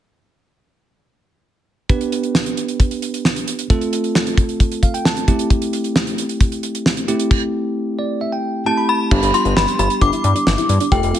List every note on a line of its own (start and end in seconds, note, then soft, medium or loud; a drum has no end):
1.90 3.66 B3 medium
1.90 3.66 D4 medium
1.90 3.66 G4 medium
1.90 3.66 B4 medium
1.90 kick loud
1.90 closed hi-hat medium
2.01 closed hi-hat medium
2.12 closed hi-hat medium
2.23 closed hi-hat soft
2.35 snare loud
2.46 closed hi-hat soft
2.57 closed hi-hat medium
2.68 closed hi-hat soft
2.80 kick medium
2.80 closed hi-hat medium
2.91 closed hi-hat soft
3.02 closed hi-hat medium
3.14 closed hi-hat medium
3.25 snare loud
3.36 closed hi-hat soft
3.48 closed hi-hat medium
3.59 closed hi-hat medium
3.70 5.25 A3 medium
3.70 5.25 C4 medium
3.70 5.25 F4 medium
3.70 5.25 A4 medium
3.70 kick loud
3.70 closed hi-hat medium
3.81 closed hi-hat medium
3.93 closed hi-hat medium
4.04 closed hi-hat soft
4.15 snare loud
4.27 closed hi-hat soft
4.38 kick medium
4.38 closed hi-hat medium
4.49 closed hi-hat soft
4.60 kick medium
4.60 closed hi-hat medium
4.72 closed hi-hat soft
4.83 4.93 F5 medium
4.83 kick medium
4.83 closed hi-hat medium
4.94 5.05 G5 medium
4.94 closed hi-hat medium
5.05 5.47 A5 medium
5.05 snare loud
5.17 closed hi-hat soft
5.28 7.05 A3 medium
5.28 7.05 C4 medium
5.28 7.05 E4 medium
5.28 7.05 G4 medium
5.28 kick medium
5.28 closed hi-hat medium
5.39 closed hi-hat medium
5.50 kick loud
5.50 closed hi-hat medium
5.62 closed hi-hat medium
5.73 closed hi-hat medium
5.84 closed hi-hat soft
5.96 snare loud
6.07 closed hi-hat soft
6.18 closed hi-hat medium
6.29 closed hi-hat soft
6.41 kick medium
6.41 closed hi-hat medium
6.52 closed hi-hat soft
6.63 closed hi-hat medium
6.75 closed hi-hat medium
6.86 snare loud
6.97 closed hi-hat medium
7.08 8.63 A3 medium
7.08 8.63 C4 medium
7.08 8.63 E4 medium
7.08 8.63 G4 medium
7.08 closed hi-hat medium
7.20 closed hi-hat medium
7.31 kick loud
7.31 crash medium
7.99 8.20 D5 medium
8.21 8.32 E5 medium
8.32 8.64 G5 medium
8.66 9.11 A3 medium
8.66 9.11 C4 soft
8.66 9.11 E4 soft
8.66 9.10 G4 medium
8.66 8.77 A5 medium
8.66 8.90 A5 medium
8.78 9.09 B5 medium
8.89 9.35 B5 medium
9.11 9.21 G1 loud
9.11 10.88 G3 medium
9.11 10.88 B3 medium
9.11 10.88 D4 medium
9.11 9.23 G4 medium
9.11 10.88 G4 medium
9.11 kick loud
9.11 crash medium
9.23 9.32 G1 loud
9.23 closed hi-hat medium
9.34 9.46 F4 medium
9.34 9.57 C6 medium
9.34 closed hi-hat medium
9.45 9.55 G1 loud
9.45 closed hi-hat soft
9.56 9.66 G1 medium
9.56 9.68 G4 medium
9.56 9.78 B5 medium
9.56 snare loud
9.68 closed hi-hat soft
9.79 9.88 G1 loud
9.79 9.91 G4 medium
9.79 10.02 B5 medium
9.79 closed hi-hat medium
9.90 closed hi-hat soft
10.01 10.11 G1 loud
10.01 10.08 D4 medium
10.01 10.95 D6 medium
10.01 kick medium
10.01 closed hi-hat medium
10.13 10.25 E4 medium
10.13 closed hi-hat soft
10.24 10.34 G2 loud
10.24 closed hi-hat medium
10.35 10.47 D4 medium
10.35 closed hi-hat medium
10.47 10.56 G1 medium
10.47 snare loud
10.58 10.70 E4 medium
10.58 closed hi-hat medium
10.69 10.79 G2 medium
10.69 closed hi-hat medium
10.80 10.87 D4 medium
10.80 closed hi-hat medium
10.92 11.01 F1 loud
10.92 11.19 A3 medium
10.92 11.19 C4 medium
10.92 11.19 F4 medium
10.92 11.04 G4 medium
10.92 11.19 A4 medium
10.92 11.19 G5 medium
10.92 kick loud
10.92 closed hi-hat medium
11.03 11.12 F1 medium
11.03 closed hi-hat medium
11.14 11.19 F4 medium
11.14 closed hi-hat medium